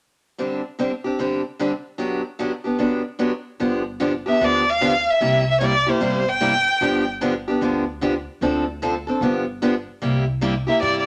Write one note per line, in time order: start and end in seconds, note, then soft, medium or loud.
0.38 0.60 D3 soft
0.38 0.61 G3 medium
0.38 0.61 C4 soft
0.38 0.61 D4 soft
0.38 0.61 G4 soft
0.79 0.90 D3 medium
0.79 0.91 G3 medium
0.79 0.91 C4 medium
0.79 0.91 D4 medium
0.79 0.91 G4 medium
1.04 1.18 C4 soft
1.04 1.19 D4 soft
1.04 1.18 G4 soft
1.19 1.41 D3 soft
1.19 1.41 G3 medium
1.19 1.41 C4 medium
1.19 1.41 D4 soft
1.19 1.41 G4 medium
1.59 1.71 D3 medium
1.59 1.71 G3 medium
1.59 1.71 C4 medium
1.59 1.71 D4 medium
1.59 1.71 G4 medium
1.98 2.21 D3 medium
1.98 2.21 F#3 medium
1.98 2.21 B3 medium
1.98 2.21 D4 medium
1.98 2.21 G4 medium
2.39 2.51 D3 medium
2.39 2.51 F#3 medium
2.39 2.51 B3 medium
2.39 2.51 D4 medium
2.39 2.51 G4 medium
2.64 2.78 B3 soft
2.64 2.78 D4 soft
2.64 2.79 G4 soft
2.79 3.01 D3 medium
2.79 3.01 F#3 soft
2.79 3.01 B3 medium
2.79 3.01 D4 medium
2.79 3.02 G4 medium
3.19 3.31 D3 medium
3.19 3.31 F#3 medium
3.19 3.31 B3 medium
3.19 3.31 D4 medium
3.19 3.31 G4 medium
3.60 4.25 G1 medium
3.60 3.82 D3 medium
3.60 3.82 F3 medium
3.60 3.82 B3 medium
3.60 3.82 D4 medium
3.60 3.82 G4 medium
4.00 4.12 D3 medium
4.00 4.12 F3 medium
4.00 4.12 B3 medium
4.00 4.12 D4 medium
4.00 4.12 G4 medium
4.26 4.40 B3 soft
4.26 4.40 D4 soft
4.26 4.40 G4 soft
4.26 4.46 E5 medium
4.40 5.05 D2 medium
4.40 4.62 D3 soft
4.40 4.63 F3 medium
4.40 4.63 B3 medium
4.40 4.63 D4 medium
4.40 4.63 G4 medium
4.40 4.71 D5 medium
4.70 5.11 F5 medium
4.81 4.92 D3 medium
4.81 4.92 F3 medium
4.81 4.92 B3 medium
4.81 4.93 D4 medium
4.81 4.93 G4 medium
5.10 5.48 E5 medium
5.21 5.85 C2 medium
5.21 5.42 C3 medium
5.21 5.43 G3 medium
5.21 5.43 A#3 medium
5.21 5.43 E4 medium
5.21 5.43 G4 medium
5.50 5.59 E5 medium
5.60 5.72 C3 medium
5.60 5.72 G3 medium
5.60 5.72 A#3 medium
5.60 5.73 E4 medium
5.60 5.73 G4 medium
5.60 5.66 C#5 medium
5.64 5.91 D5 medium
5.86 6.00 A#3 soft
5.86 6.00 E4 soft
5.86 6.00 G4 soft
5.86 6.30 C5 medium
6.00 6.65 G1 medium
6.00 6.22 C3 medium
6.00 6.23 G3 medium
6.00 6.23 A#3 medium
6.00 6.23 E4 medium
6.00 6.23 G4 medium
6.28 7.07 G5 medium
6.41 6.52 C3 medium
6.41 6.52 G3 medium
6.41 6.52 A#3 medium
6.41 6.53 E4 medium
6.41 6.53 G4 medium
6.81 7.45 G1 medium
6.81 7.03 D3 medium
6.81 7.03 F3 medium
6.81 7.03 B3 medium
6.81 7.03 D4 medium
6.81 7.03 G4 medium
7.21 7.33 D3 medium
7.21 7.33 F3 medium
7.21 7.33 B3 medium
7.21 7.33 D4 medium
7.21 7.33 G4 medium
7.48 7.61 B3 soft
7.48 7.61 D4 soft
7.48 7.61 G4 medium
7.61 8.25 D2 medium
7.61 7.83 D3 medium
7.61 7.83 F3 medium
7.61 7.84 B3 medium
7.61 7.84 D4 medium
7.61 7.84 G4 medium
8.01 8.13 D3 medium
8.01 8.13 F3 medium
8.01 8.13 B3 medium
8.01 8.13 D4 medium
8.01 8.14 G4 medium
8.41 9.05 D2 medium
8.41 8.63 D3 medium
8.41 8.64 F3 medium
8.41 8.64 C4 medium
8.41 8.64 D4 medium
8.41 8.64 A4 medium
8.82 8.93 D3 medium
8.82 8.93 F3 medium
8.82 8.94 C4 medium
8.82 8.94 D4 medium
8.82 8.94 A4 medium
9.07 9.22 C4 soft
9.07 9.22 D4 soft
9.07 9.21 A4 medium
9.21 9.85 G1 medium
9.21 9.43 D3 medium
9.21 9.44 F3 medium
9.21 9.44 B3 medium
9.21 9.44 D4 medium
9.21 9.44 G4 medium
9.62 9.73 D3 medium
9.62 9.73 F3 medium
9.62 9.74 B3 medium
9.62 9.73 D4 medium
9.62 9.74 G4 medium
10.02 10.66 C2 medium
10.02 10.23 C3 medium
10.02 10.24 G3 medium
10.02 10.24 A#3 medium
10.02 10.24 E4 medium
10.02 10.24 G4 medium
10.41 10.53 C3 medium
10.41 10.53 G3 medium
10.41 10.53 A#3 medium
10.41 10.54 E4 medium
10.41 10.54 G4 medium
10.67 10.81 A#3 soft
10.67 10.82 E4 soft
10.67 10.81 G4 soft
10.67 10.81 E5 medium
10.82 11.06 G2 medium
10.82 11.04 C3 medium
10.82 11.04 G3 medium
10.82 11.04 A#3 medium
10.82 11.04 E4 medium
10.82 11.04 G4 medium
10.82 10.98 D5 medium
11.00 11.06 D5 medium